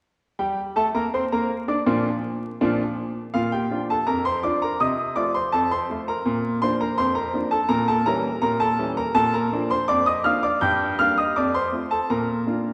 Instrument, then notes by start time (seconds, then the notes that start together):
upright piano
0.39 G3 G4 G5
0.76 A3 A4 A5
0.94 A#3 A#4 A#5
1.14 C4 C5 C6
1.32 A#3 A#4 A#5
1.68 D4 D5 D6
1.86 A#2 F3 D4 F4
2.61 A#2 F3 D4 F4
3.34 A#2 F4 F5
3.52 G4 G5
3.71 F3 D4 F4
3.90 A4 A5
4.06 F2 A#4 A#5
4.25 C5 C6
4.43 F3 D4 F4 D5 D6
4.62 A#4 A#5
4.80 C3 D#5 D#6
5.16 F3 A3 F4 D5 D6
5.35 C5 C6
5.52 F2 A4 A5
5.71 C5 C6
5.90 F3 A3 F4
6.08 A#4 A#5
6.26 A#2
6.62 F3 A#3 D4 C5 C6
6.81 A#4 A#5
6.98 F2 C5 C6
7.15 A#4 A#5
7.34 F3 A#3 D4
7.51 A4 A5
7.69 A#2 A#4 A#5
7.88 A4 A5
8.06 E3 G3 C#4 A#4 A#5
8.42 A#2 A#4 A#5
8.60 A4 A5
8.79 E3 G3 C#4
8.97 A#4 A#5
9.15 A#2 A4 A5
9.34 A#4 A#5
9.53 F3 A#3 D4
9.70 C5 C6
9.88 F2 D5 D6
10.06 D#5 D#6
10.24 F3 A#3 D4 F5 F6
10.43 D5 D6
10.61 G2 G5 G6
10.99 G3 A#3 D4 F5 F6
11.18 D#5 D#6
11.36 F2 D5 D6
11.54 C5 C6
11.72 A3 C4 F4
11.91 A4 A5
12.10 A#2 A#4 A#5
12.47 A#3 D4 F4